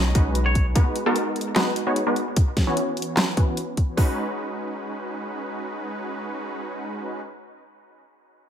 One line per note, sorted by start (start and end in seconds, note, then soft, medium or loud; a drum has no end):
0.00 0.13 B1 medium
0.00 0.13 G#3 medium
0.00 0.13 C#4 medium
0.00 0.13 D#4 medium
0.00 0.13 F#4 medium
0.00 0.13 C#5 loud
0.15 0.74 B1 medium
0.15 0.73 G#3 medium
0.15 0.73 C#4 medium
0.15 0.73 D#4 medium
0.15 0.73 F#4 medium
0.15 0.73 B4 medium
0.15 kick loud
0.15 closed hi-hat medium
0.35 closed hi-hat medium
0.46 0.65 C#5 medium
0.55 kick medium
0.55 closed hi-hat medium
0.75 1.04 G#3 medium
0.75 1.04 B3 medium
0.75 1.04 D#4 medium
0.75 1.04 F#4 medium
0.75 1.04 B4 loud
0.75 kick loud
0.75 closed hi-hat medium
0.96 closed hi-hat medium
1.06 1.54 G#3 loud
1.06 1.54 B3 medium
1.06 1.54 D#4 medium
1.06 1.54 F#4 medium
1.06 1.54 A#4 loud
1.16 closed hi-hat medium
1.36 closed hi-hat soft
1.41 closed hi-hat medium
1.56 1.84 G#3 loud
1.56 1.84 B3 medium
1.56 1.84 D#4 medium
1.56 1.84 F#4 medium
1.56 1.84 B4 loud
1.56 snare loud
1.56 clap medium
1.56 closed hi-hat medium
1.76 closed hi-hat medium
1.87 2.04 G#3 medium
1.87 2.04 B3 medium
1.87 2.04 D#4 medium
1.87 2.04 F#4 medium
1.87 2.04 C#5 medium
1.96 closed hi-hat medium
2.07 2.35 G#3 medium
2.07 2.35 B3 medium
2.07 2.35 D#4 medium
2.07 2.35 F#4 medium
2.07 2.35 B4 medium
2.16 closed hi-hat medium
2.36 kick loud
2.36 closed hi-hat medium
2.57 kick medium
2.57 snare medium
2.57 closed hi-hat medium
2.67 3.35 E3 medium
2.67 3.35 B3 medium
2.67 3.35 C#4 medium
2.67 3.35 F#4 medium
2.67 3.35 C#5 loud
2.77 closed hi-hat medium
2.97 closed hi-hat soft
3.02 closed hi-hat medium
3.17 snare loud
3.17 clap medium
3.17 closed hi-hat medium
3.37 3.95 E3 medium
3.37 3.95 B3 medium
3.37 3.95 C#4 medium
3.37 3.95 F#4 medium
3.37 3.95 B4 medium
3.37 kick medium
3.37 closed hi-hat medium
3.57 closed hi-hat medium
3.77 kick medium
3.77 closed hi-hat medium
3.97 7.21 G#3 medium
3.97 7.21 C#4 medium
3.97 7.21 D#4 medium
3.97 7.21 F#4 medium
3.97 7.21 B4 medium
3.97 kick medium
3.97 open hi-hat medium